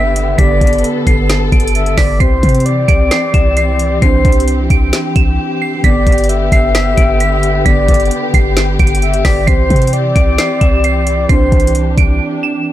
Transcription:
Already playing: 808-style bass G1, synth keys D3 B3 G4, string section D3 B3 G4, soft synth lead E5, synth bell B6, impact
0.16 closed hi-hat
0.36 808-style bass G1, synth keys D3 B3 G4, string section A4, soft synth lead D5, synth bell B6, kick, closed hi-hat
0.61 808-style bass G1, kick, closed hi-hat
0.67 closed hi-hat
0.73 closed hi-hat
0.78 closed hi-hat
0.84 closed hi-hat
1.07 808-style bass G1, synth bell C7, kick, closed hi-hat
1.30 snare, closed hi-hat
1.52 808-style bass G1, synth bell D7, kick, closed hi-hat
1.60 closed hi-hat
1.67 closed hi-hat
1.75 soft synth lead E5, closed hi-hat
1.86 closed hi-hat
1.98 808-style bass G1, soft synth lead D5, synth bell B6, kick, snare, open hi-hat
2.18 808-style bass C2, synth keys E3 C4 G4, string section E3 C4 G4, soft synth lead C5, synth bell C7, kick, closed hi-hat
2.43 808-style bass C3, kick, closed hi-hat
2.49 closed hi-hat
2.55 closed hi-hat
2.60 closed hi-hat
2.66 soft synth lead D5, closed hi-hat
2.88 808-style bass C2, synth bell D7, kick, closed hi-hat
3.11 synth bell C7, snare, closed hi-hat
3.34 808-style bass C2, synth bell E7, kick, closed hi-hat
3.57 synth bell C7, closed hi-hat
3.79 closed hi-hat
4.00 808-style bass C2, synth keys E3 C4 D4, soft synth lead C5, synth bell C7, kick, closed hi-hat
4.25 808-style bass C2, kick, closed hi-hat
4.32 closed hi-hat
4.40 closed hi-hat
4.48 closed hi-hat
4.70 808-style bass C2, synth bell D7, kick, closed hi-hat
4.93 snare, closed hi-hat
5.16 808-style bass C2, synth bell E7, kick, closed hi-hat
5.62 synth bell C7
5.82 808-style bass G1, synth keys D3 B3 G4, string section D3 B3, soft synth lead D5, synth bell B6, kick, closed hi-hat
6.07 808-style bass G1, kick, closed hi-hat
6.12 closed hi-hat
6.18 closed hi-hat
6.24 closed hi-hat
6.29 soft synth lead E5, closed hi-hat
6.52 808-style bass G1, synth bell C7, kick, closed hi-hat
6.75 synth bell B6, snare, closed hi-hat
6.97 808-style bass G1, synth bell D7, kick, closed hi-hat
7.20 synth bell B6, closed hi-hat
7.43 closed hi-hat
7.64 808-style bass G1, synth keys D3 B3 G4, soft synth lead D5, synth bell B6, kick, closed hi-hat
7.88 808-style bass G1, kick, closed hi-hat
7.94 closed hi-hat
8.00 closed hi-hat
8.05 closed hi-hat
8.11 closed hi-hat
8.34 808-style bass G1, synth bell C7, kick, closed hi-hat
8.57 snare, closed hi-hat
8.79 808-style bass G1, synth bell D7, kick, closed hi-hat
8.87 closed hi-hat
8.95 closed hi-hat
9.02 soft synth lead E5, closed hi-hat
9.14 closed hi-hat
9.25 808-style bass G1, soft synth lead D5, synth bell B6, kick, snare, open hi-hat
9.46 808-style bass C2, synth keys E3 C4 G4, string section E3 C4, soft synth lead C5, synth bell C7, kick, closed hi-hat
9.70 808-style bass C3, kick, closed hi-hat
9.76 closed hi-hat
9.82 closed hi-hat
9.87 closed hi-hat
9.93 soft synth lead D5, closed hi-hat
10.15 808-style bass C2, synth bell D7, kick, closed hi-hat
10.38 synth bell C7, snare, closed hi-hat
10.61 808-style bass C2, synth bell E7, kick, closed hi-hat
10.84 synth bell C7, closed hi-hat
11.07 closed hi-hat
11.28 808-style bass C2, synth keys E3 C4 D4, string section D4, soft synth lead C5, synth bell C7, kick, closed hi-hat
11.52 808-style bass C2, kick, closed hi-hat
11.60 closed hi-hat
11.67 closed hi-hat
11.75 closed hi-hat
11.98 808-style bass C2, synth bell D7, kick, closed hi-hat
12.43 synth bell E7

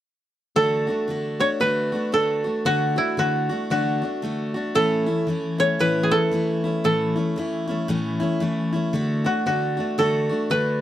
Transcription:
0.56 steel-string acoustic guitar D3 A3 D4 F#4, koto A4
0.87 steel-string acoustic guitar A3 D4 F#4
1.08 steel-string acoustic guitar D3 A3 D4 F#4
1.40 steel-string acoustic guitar A3 D4 F#4, koto C#5
1.60 steel-string acoustic guitar D3 A3 D4 F#4, koto B4
1.92 steel-string acoustic guitar A3 D4 F#4
2.12 steel-string acoustic guitar D3 A3 D4 F#4, koto A4
2.44 steel-string acoustic guitar A3 D4 F#4
2.65 steel-string acoustic guitar D3 A3 D4 F#4, koto F#4
2.96 steel-string acoustic guitar A3 D4 F#4, koto E4
3.17 steel-string acoustic guitar D3 A3 D4 F#4, koto F#4
3.49 steel-string acoustic guitar A3 D4 F#4
3.70 steel-string acoustic guitar D3 A3 D4 F#4, koto F#4
4.02 steel-string acoustic guitar A3 D4 F#4
4.22 steel-string acoustic guitar D3 A3 D4 F#4
4.54 steel-string acoustic guitar A3 D4 F#4
4.75 steel-string acoustic guitar A2 E3 A3 C#4 E4, koto A4
5.06 steel-string acoustic guitar A3 C#4 E4
5.27 steel-string acoustic guitar E3 A3 C#4 E4
5.58 steel-string acoustic guitar A3 C#4 E4, koto C#5
5.79 steel-string acoustic guitar A2 E3 A3 C#4 E4, koto B4
6.03 koto G#4
6.11 steel-string acoustic guitar A3 C#4 E4, koto A4
6.31 steel-string acoustic guitar E3 A3 C#4 E4
6.64 steel-string acoustic guitar A3 C#4 E4
6.84 steel-string acoustic guitar A2 E3 A3 C#4 E4, koto A4
7.16 steel-string acoustic guitar A3 C#4 E4
7.36 steel-string acoustic guitar E3 A3 C#4 E4
7.67 steel-string acoustic guitar A3 C#4 E4
7.88 steel-string acoustic guitar A2 E3 A3 C#4 E4
8.20 steel-string acoustic guitar A3 C#4 E4
8.40 steel-string acoustic guitar E3 A3 C#4 E4
8.73 steel-string acoustic guitar A3 C#4 E4
8.93 steel-string acoustic guitar D3 A3 D4 F#4
9.24 steel-string acoustic guitar A3 D4 F#4, koto F#4
9.46 steel-string acoustic guitar D3 A3 D4 F#4, koto F#4
9.77 steel-string acoustic guitar A3 D4 F#4
9.98 steel-string acoustic guitar D3 A3 D4 F#4, koto A4
10.29 steel-string acoustic guitar A3 D4 F#4
10.50 steel-string acoustic guitar D3 A3 D4 F#4, koto B4

